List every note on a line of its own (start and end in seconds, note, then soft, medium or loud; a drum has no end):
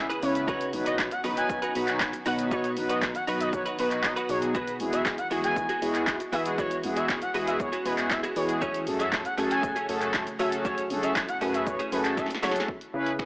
0.00 0.11 C#2 loud
0.00 0.44 C#3 medium
0.00 0.44 G#3 medium
0.00 0.46 C#4 medium
0.00 0.44 E4 medium
0.09 0.21 E4 medium
0.09 0.21 G#4 medium
0.09 0.22 B4 medium
0.09 closed hi-hat medium
0.09 shaker medium
0.22 0.75 C#3 loud
0.22 0.48 G#3 medium
0.22 0.48 B3 medium
0.22 0.48 C#4 medium
0.22 0.48 E4 medium
0.22 0.48 B4 medium
0.22 0.32 C#5 medium
0.22 muted clean electric guitar stroke soft
0.22 open hi-hat medium
0.22 shaker medium
0.35 muted clean electric guitar stroke medium
0.35 closed hi-hat medium
0.35 shaker medium
0.48 4.51 D#3 medium
0.48 4.51 F#3 medium
0.48 6.54 B3 medium
0.48 0.71 D#4 medium
0.48 10.61 F#4 medium
0.48 0.72 F#4 loud
0.48 0.72 B4 loud
0.48 0.66 C#5 loud
0.48 kick loud
0.48 shaker medium
0.61 closed hi-hat medium
0.61 shaker medium
0.73 1.12 B1 loud
0.73 1.09 F#3 medium
0.73 1.09 B3 medium
0.73 1.09 D#4 medium
0.73 1.09 F#4 medium
0.73 1.09 B4 medium
0.73 muted clean electric guitar stroke medium
0.73 open hi-hat medium
0.73 shaker medium
0.86 0.97 D#4 medium
0.86 0.98 F#4 medium
0.86 0.98 B4 medium
0.86 0.95 D#5 medium
0.86 closed hi-hat medium
0.86 shaker medium
0.98 muted clean electric guitar stroke soft
0.98 kick loud
0.98 snare medium
0.98 clap loud
0.98 shaker medium
1.11 1.20 F#5 medium
1.11 muted clean electric guitar stroke medium
1.11 closed hi-hat medium
1.11 shaker medium
1.24 1.63 B1 medium
1.24 1.60 F#3 medium
1.24 1.60 B3 medium
1.24 1.37 D#4 medium
1.24 1.60 D#4 medium
1.24 1.60 F#4 medium
1.24 1.36 F#4 medium
1.24 1.60 B4 loud
1.24 1.35 B4 loud
1.24 open hi-hat medium
1.24 shaker medium
1.37 1.48 D#4 medium
1.37 1.49 F#4 medium
1.37 1.49 B4 medium
1.37 1.73 G#5 medium
1.37 closed hi-hat medium
1.37 shaker medium
1.50 kick loud
1.50 shaker medium
1.62 1.74 D#4 medium
1.62 1.74 F#4 medium
1.62 1.75 B4 medium
1.62 closed hi-hat medium
1.62 shaker medium
1.75 2.14 B1 loud
1.75 2.11 F#3 medium
1.75 2.11 B3 medium
1.75 1.88 D#4 medium
1.75 2.11 D#4 medium
1.75 2.11 F#4 medium
1.75 1.87 F#4 medium
1.75 2.11 B4 medium
1.75 1.86 B4 medium
1.75 open hi-hat medium
1.75 shaker medium
1.87 muted clean electric guitar stroke soft
1.87 clap medium
1.87 closed hi-hat medium
1.87 shaker medium
2.00 kick loud
2.00 snare medium
2.00 clap loud
2.00 shaker medium
2.13 muted clean electric guitar stroke medium
2.13 closed hi-hat medium
2.13 shaker medium
2.26 2.78 B2 loud
2.26 2.61 F#3 medium
2.26 2.61 B3 medium
2.26 2.43 D#4 medium
2.26 2.62 D#4 medium
2.26 2.62 F#4 medium
2.26 2.38 F#4 medium
2.26 2.62 B4 medium
2.26 2.37 B4 loud
2.26 2.35 F#5 medium
2.26 open hi-hat medium
2.26 shaker medium
2.39 muted clean electric guitar stroke soft
2.39 closed hi-hat medium
2.39 shaker medium
2.51 2.75 D#4 medium
2.51 2.75 F#4 medium
2.51 2.75 B4 loud
2.51 2.69 C#5 loud
2.51 kick loud
2.51 shaker medium
2.64 closed hi-hat medium
2.64 shaker medium
2.77 3.16 B1 loud
2.77 3.12 F#3 medium
2.77 3.12 B3 medium
2.77 3.12 D#4 medium
2.77 3.12 F#4 medium
2.77 3.13 B4 medium
2.77 muted clean electric guitar stroke soft
2.77 open hi-hat medium
2.77 shaker soft
2.89 3.01 D#4 medium
2.89 3.02 F#4 medium
2.89 3.02 B4 medium
2.89 2.98 D#5 medium
2.89 closed hi-hat medium
2.89 shaker medium
3.02 kick loud
3.02 snare medium
3.02 clap loud
3.02 shaker medium
3.15 3.24 F#5 medium
3.15 muted clean electric guitar stroke soft
3.15 closed hi-hat medium
3.15 shaker soft
3.27 3.67 B1 medium
3.27 3.63 F#3 medium
3.27 3.63 B3 medium
3.27 3.40 D#4 medium
3.27 3.63 D#4 medium
3.27 3.63 F#4 medium
3.27 3.40 F#4 medium
3.27 3.63 B4 loud
3.27 3.39 B4 loud
3.27 open hi-hat medium
3.27 shaker medium
3.40 3.52 D#4 medium
3.40 3.52 F#4 medium
3.40 3.53 B4 medium
3.40 3.49 D#5 medium
3.40 closed hi-hat medium
3.40 shaker medium
3.53 3.71 C#5 medium
3.53 muted clean electric guitar stroke medium
3.53 kick loud
3.53 shaker medium
3.65 3.77 D#4 medium
3.65 3.78 F#4 medium
3.65 3.78 B4 medium
3.65 closed hi-hat medium
3.65 shaker medium
3.78 4.17 B1 loud
3.78 4.14 F#3 medium
3.78 4.14 B3 medium
3.78 3.91 D#4 medium
3.78 4.14 D#4 medium
3.78 4.14 F#4 medium
3.78 3.91 F#4 medium
3.78 3.87 B4 medium
3.78 4.14 B4 medium
3.78 3.90 B4 medium
3.78 open hi-hat medium
3.78 shaker medium
3.91 clap medium
3.91 closed hi-hat medium
3.91 shaker medium
4.04 4.13 D#5 medium
4.04 muted clean electric guitar stroke soft
4.04 kick loud
4.04 snare medium
4.04 clap loud
4.04 shaker medium
4.16 4.28 D#4 medium
4.16 4.28 F#4 medium
4.16 4.29 B4 medium
4.16 closed hi-hat medium
4.16 shaker medium
4.29 4.82 B2 loud
4.29 4.55 F#3 medium
4.29 4.55 B3 medium
4.29 4.55 D#4 medium
4.29 4.55 F#4 medium
4.29 4.55 G#4 medium
4.29 4.38 C#5 medium
4.29 muted clean electric guitar stroke soft
4.29 open hi-hat medium
4.29 shaker medium
4.42 muted clean electric guitar stroke soft
4.42 closed hi-hat medium
4.42 shaker medium
4.55 8.58 E3 medium
4.55 8.58 G#3 medium
4.55 4.78 B3 medium
4.55 4.78 F#4 loud
4.55 4.79 G#4 loud
4.55 4.72 B4 loud
4.55 kick loud
4.55 shaker medium
4.68 closed hi-hat medium
4.68 shaker medium
4.80 5.19 E2 loud
4.80 5.16 G#3 medium
4.80 5.16 B3 medium
4.80 5.16 E4 medium
4.80 5.16 F#4 medium
4.80 5.16 G#4 medium
4.80 muted clean electric guitar stroke soft
4.80 open hi-hat medium
4.80 shaker medium
4.93 5.04 B3 medium
4.93 5.05 F#4 medium
4.93 5.05 G#4 medium
4.93 5.02 E5 medium
4.93 closed hi-hat medium
4.93 shaker medium
5.06 muted clean electric guitar stroke soft
5.06 kick loud
5.06 snare medium
5.06 clap loud
5.06 shaker medium
5.18 5.27 F#5 medium
5.18 muted clean electric guitar stroke soft
5.18 closed hi-hat medium
5.18 shaker medium
5.31 5.70 E2 medium
5.31 5.66 G#3 medium
5.31 5.44 B3 medium
5.31 5.67 B3 medium
5.31 5.67 E4 medium
5.31 5.67 F#4 medium
5.31 5.43 F#4 medium
5.31 5.67 G#4 loud
5.31 5.42 G#4 medium
5.31 open hi-hat medium
5.31 shaker medium
5.43 5.55 B3 medium
5.43 5.56 F#4 medium
5.43 5.56 G#4 medium
5.43 5.80 G#5 medium
5.43 closed hi-hat medium
5.43 shaker medium
5.56 kick loud
5.56 shaker medium
5.69 5.80 B3 medium
5.69 5.81 F#4 medium
5.69 5.82 G#4 medium
5.69 closed hi-hat medium
5.69 shaker medium
5.82 6.21 E2 loud
5.82 6.17 G#3 medium
5.82 5.95 B3 medium
5.82 6.17 B3 medium
5.82 6.17 E4 medium
5.82 6.17 F#4 medium
5.82 5.94 F#4 medium
5.82 6.18 G#4 medium
5.82 5.93 G#4 medium
5.82 open hi-hat medium
5.82 shaker medium
5.95 muted clean electric guitar stroke soft
5.95 clap medium
5.95 closed hi-hat medium
5.95 shaker medium
6.07 kick loud
6.07 snare loud
6.07 clap loud
6.07 shaker medium
6.20 muted clean electric guitar stroke medium
6.20 closed hi-hat medium
6.20 shaker medium
6.32 6.85 E3 loud
6.32 6.68 G#3 medium
6.32 6.49 B3 medium
6.32 6.68 B3 medium
6.32 6.68 E4 medium
6.32 6.68 F#4 medium
6.32 6.45 F#4 loud
6.32 6.68 G#4 medium
6.32 6.44 G#4 loud
6.32 6.42 E5 medium
6.32 open hi-hat medium
6.32 shaker medium
6.45 muted clean electric guitar stroke medium
6.45 closed hi-hat medium
6.45 shaker medium
6.58 6.81 B3 loud
6.58 8.60 C#4 medium
6.58 6.82 F#4 loud
6.58 6.82 G#4 loud
6.58 6.76 C#5 loud
6.58 kick loud
6.58 shaker medium
6.71 closed hi-hat medium
6.71 shaker medium
6.83 7.23 E2 loud
6.83 7.19 G#3 medium
6.83 7.19 B3 medium
6.83 7.19 E4 medium
6.83 7.19 F#4 medium
6.83 7.19 G#4 medium
6.83 muted clean electric guitar stroke soft
6.83 open hi-hat medium
6.83 shaker medium
6.96 7.08 B3 medium
6.96 7.08 F#4 medium
6.96 7.09 G#4 medium
6.96 7.05 E5 medium
6.96 closed hi-hat medium
6.96 shaker medium
7.09 muted clean electric guitar stroke soft
7.09 kick loud
7.09 snare medium
7.09 clap loud
7.09 shaker medium
7.22 7.31 F#5 medium
7.22 muted clean electric guitar stroke medium
7.22 closed hi-hat medium
7.22 shaker medium
7.34 7.73 E2 loud
7.34 7.70 G#3 medium
7.34 7.47 B3 medium
7.34 7.70 B3 medium
7.34 7.70 E4 medium
7.34 7.70 F#4 medium
7.34 7.46 F#4 loud
7.34 7.70 G#4 loud
7.34 7.46 G#4 loud
7.34 open hi-hat medium
7.34 shaker medium
7.47 7.58 B3 medium
7.47 7.59 F#4 medium
7.47 7.59 G#4 medium
7.47 7.56 E5 medium
7.47 closed hi-hat medium
7.47 shaker medium
7.60 7.77 C#5 medium
7.60 kick loud
7.60 shaker medium
7.72 7.84 B3 medium
7.72 7.85 F#4 medium
7.72 7.85 G#4 medium
7.72 closed hi-hat medium
7.72 shaker medium
7.85 8.24 E2 loud
7.85 8.21 G#3 medium
7.85 7.98 B3 medium
7.85 8.21 B3 medium
7.85 8.21 E4 medium
7.85 8.21 F#4 medium
7.85 7.98 F#4 medium
7.85 8.21 G#4 medium
7.85 7.97 G#4 medium
7.85 7.94 B4 medium
7.85 open hi-hat medium
7.85 shaker medium
7.98 muted clean electric guitar stroke soft
7.98 clap medium
7.98 closed hi-hat medium
7.98 shaker medium
8.10 8.19 E5 medium
8.10 muted clean electric guitar stroke soft
8.10 kick loud
8.10 snare loud
8.10 clap loud
8.10 shaker medium
8.23 8.35 B3 medium
8.23 8.35 F#4 medium
8.23 8.36 G#4 medium
8.23 closed hi-hat medium
8.23 shaker medium
8.36 8.89 E3 loud
8.36 8.62 G#3 medium
8.36 8.62 B3 medium
8.36 8.62 E4 medium
8.36 8.62 F#4 medium
8.36 8.62 G#4 medium
8.36 8.45 C#5 medium
8.36 muted clean electric guitar stroke soft
8.36 open hi-hat medium
8.36 shaker medium
8.49 muted clean electric guitar stroke medium
8.49 closed hi-hat medium
8.49 shaker medium
8.61 12.64 C#3 medium
8.61 12.64 F#3 medium
8.61 8.85 A3 medium
8.61 12.64 A3 medium
8.61 8.85 C#4 loud
8.61 8.85 G#4 loud
8.61 8.79 C#5 loud
8.61 kick loud
8.61 shaker medium
8.74 closed hi-hat medium
8.74 shaker medium
8.87 9.26 F#2 loud
8.87 9.22 A3 medium
8.87 9.23 C#4 medium
8.87 9.23 F#4 medium
8.87 9.23 G#4 medium
8.87 9.23 A4 medium
8.87 muted clean electric guitar stroke soft
8.87 open hi-hat medium
8.87 shaker medium
8.99 9.11 A3 medium
8.99 9.11 C#4 medium
8.99 9.12 G#4 medium
8.99 9.09 E5 medium
8.99 closed hi-hat medium
8.99 shaker medium
9.12 muted clean electric guitar stroke soft
9.12 kick loud
9.12 snare medium
9.12 clap loud
9.12 shaker medium
9.25 9.34 F#5 medium
9.25 muted clean electric guitar stroke soft
9.25 closed hi-hat medium
9.25 shaker medium
9.37 9.77 F#2 loud
9.37 9.50 A3 medium
9.37 9.73 A3 medium
9.37 9.73 C#4 medium
9.37 9.50 C#4 medium
9.37 9.73 F#4 medium
9.37 9.73 G#4 medium
9.37 9.49 G#4 loud
9.37 9.74 A4 loud
9.37 open hi-hat medium
9.37 shaker medium
9.50 9.62 A3 medium
9.50 9.62 C#4 medium
9.50 9.63 G#4 medium
9.50 9.87 G#5 medium
9.50 closed hi-hat medium
9.50 shaker medium
9.63 muted clean electric guitar stroke soft
9.63 kick loud
9.63 shaker medium
9.76 9.87 A3 medium
9.76 9.88 C#4 medium
9.76 9.88 G#4 medium
9.76 closed hi-hat medium
9.76 shaker medium
9.88 10.28 F#2 loud
9.88 10.02 A3 medium
9.88 10.24 A3 medium
9.88 10.24 C#4 medium
9.88 10.01 C#4 medium
9.88 10.24 F#4 medium
9.88 10.24 G#4 medium
9.88 10.00 G#4 medium
9.88 10.24 A4 loud
9.88 open hi-hat medium
9.88 shaker medium
10.01 muted clean electric guitar stroke medium
10.01 clap medium
10.01 closed hi-hat medium
10.01 shaker medium
10.14 kick loud
10.14 snare medium
10.14 clap loud
10.14 shaker medium
10.27 muted clean electric guitar stroke soft
10.27 closed hi-hat medium
10.27 shaker medium
10.39 10.92 F#3 loud
10.39 10.56 A3 medium
10.39 10.75 A3 medium
10.39 10.75 C#4 medium
10.39 10.52 C#4 medium
10.39 10.75 F#4 medium
10.39 10.75 G#4 medium
10.39 10.51 G#4 loud
10.39 10.75 A4 medium
10.39 10.48 E5 medium
10.39 open hi-hat medium
10.39 shaker medium
10.52 muted clean electric guitar stroke medium
10.52 closed hi-hat medium
10.52 shaker medium
10.65 10.88 A3 loud
10.65 10.89 C#4 medium
10.65 12.66 E4 medium
10.65 10.89 G#4 loud
10.65 10.82 C#5 loud
10.65 kick loud
10.65 shaker medium
10.78 closed hi-hat medium
10.78 shaker medium
10.90 11.29 F#2 loud
10.90 11.26 A3 medium
10.90 11.26 C#4 medium
10.90 11.26 F#4 medium
10.90 11.26 G#4 medium
10.90 11.26 A4 medium
10.90 muted clean electric guitar stroke soft
10.90 open hi-hat medium
10.90 shaker medium
11.03 11.15 A3 medium
11.03 11.15 C#4 medium
11.03 11.15 G#4 medium
11.03 11.12 E5 medium
11.03 closed hi-hat medium
11.03 shaker medium
11.16 muted clean electric guitar stroke soft
11.16 kick loud
11.16 snare medium
11.16 clap loud
11.16 shaker medium
11.28 11.37 F#5 medium
11.28 muted clean electric guitar stroke medium
11.28 closed hi-hat medium
11.28 shaker medium
11.41 11.80 F#2 medium
11.41 11.77 A3 medium
11.41 11.54 A3 medium
11.41 11.77 C#4 medium
11.41 11.53 C#4 medium
11.41 11.77 F#4 medium
11.41 11.77 G#4 medium
11.41 11.52 G#4 loud
11.41 11.77 B4 loud
11.41 open hi-hat medium
11.41 shaker medium
11.54 11.65 A3 medium
11.54 11.66 C#4 medium
11.54 11.66 G#4 medium
11.54 11.63 E5 medium
11.54 closed hi-hat medium
11.54 shaker medium
11.66 11.84 C#5 medium
11.66 muted clean electric guitar stroke soft
11.66 kick loud
11.66 shaker medium
11.79 11.91 A3 medium
11.79 11.91 C#4 medium
11.79 11.92 G#4 medium
11.79 closed hi-hat medium
11.79 shaker medium
11.92 12.31 F#2 loud
11.92 12.27 A3 medium
11.92 12.05 A3 medium
11.92 12.28 C#4 medium
11.92 12.04 C#4 medium
11.92 12.28 F#4 medium
11.92 12.28 G#4 medium
11.92 12.03 G#4 medium
11.92 12.28 A4 loud
11.92 12.01 B4 medium
11.92 open hi-hat medium
11.92 shaker medium
12.05 muted clean electric guitar stroke soft
12.05 clap medium
12.05 closed hi-hat medium
12.05 shaker medium
12.17 12.26 E5 medium
12.17 muted clean electric guitar stroke medium
12.17 kick loud
12.17 snare medium
12.17 shaker medium
12.26 muted clean electric guitar stroke medium
12.26 snare medium
12.30 closed hi-hat medium
12.30 shaker medium
12.34 snare medium
12.42 12.62 F#3 loud
12.42 12.60 A3 medium
12.42 12.68 A3 medium
12.42 12.68 C#4 medium
12.42 12.55 C#4 loud
12.42 12.68 F#4 medium
12.42 12.69 G#4 medium
12.42 12.54 G#4 loud
12.42 12.69 A4 medium
12.42 12.52 C#5 medium
12.42 snare medium
12.42 open hi-hat medium
12.42 shaker medium
12.51 muted clean electric guitar stroke soft
12.51 snare loud
12.56 closed hi-hat medium
12.56 shaker medium
12.60 snare loud
12.68 kick loud
12.81 closed hi-hat medium
12.93 13.25 C#3 medium
12.93 13.11 C#4 loud
12.93 13.11 E4 medium
12.93 13.12 G#4 loud
12.93 13.12 B4 loud
13.06 closed hi-hat medium
13.19 13.25 E4 medium
13.19 13.25 G#4 medium
13.19 13.25 B4 loud
13.19 finger snap loud
13.19 kick loud